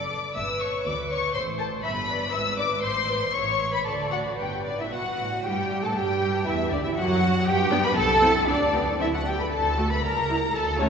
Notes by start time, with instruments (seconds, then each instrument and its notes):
Already playing: double bass section F#1, cello section F#2, violin section D5 D6
0.10 viola section A4
0.35 double bass section G1, cello section G2, viola section B4, violin section E5 E6
0.61 violin section C#5 C#6
0.85 double bass section D2, cello section D2, violin section D5 D6
1.10 violin section C#5 C#6
1.34 double bass section A1, cello section A2, viola section C5, violin section C5 C6
1.59 violin section A4 A5
1.84 double bass section G1, cello section G2, violin section B4 B5, viola section E5
2.09 viola section D5
2.33 double bass section G#1, cello section G#2, viola section B4, violin section E5 E6
2.58 violin section D5 D6
2.83 double bass section A1, cello section A2, violin section C5 C6, viola section C5
3.09 viola section B4
3.33 double bass section A1, cello section A2, violin section C#5 C#6, viola section C#5
3.72 violin section B4 B5
3.85 double bass section D2, cello section D3, violin section A4 A5, viola section D5
4.11 violin section F#4 F#5
4.38 double bass section G1, cello section G2, violin section G4 G5, viola section B4
4.65 cello section D4, violin section D5
4.79 cello section E4, violin section E5
4.92 cello section B2 F#4, violin section F#5
5.19 cello section A2
5.45 double bass section G2, viola section G3, cello section G4, violin section G5
5.83 double bass section A2, viola section A3, cello section A4, violin section A5
5.95 double bass section G2, viola section G3, cello section G4, violin section G5
6.45 double bass section E2, viola section E3, cello section E4, violin section E5
6.70 double bass section D2, viola section D3, cello section D4, violin section D5
6.83 double bass section E2, viola section E3, cello section E4, violin section E5
6.95 double bass section F#2, viola section F#3, cello section F#4, violin section F#5
7.45 double bass section G2, cello section G4, violin section G5
7.70 viola section B3 D4
7.83 cello section B4, violin section B5
7.96 double bass section C2, cello section A4, violin section A5
8.21 viola section C4 E4
8.47 double bass section D2, cello section D4, violin section D5
8.73 viola section B3 G4
8.99 double bass section D2, viola section C4, cello section E4, violin section E5
9.14 cello section F#4, violin section F#5
9.26 viola section B3, cello section G4, violin section G5
9.40 cello section B4, violin section B5
9.52 double bass section D2, cello section A4, violin section A5
9.78 viola section A3 F#4
9.91 cello section B4, violin section B5
10.04 double bass section C#2, cello section A#4, violin section A#5
10.29 viola section G3 E4
10.54 double bass section D2, cello section A4, violin section A5
10.79 viola section A3 F#4, cello section C#4, violin section C#5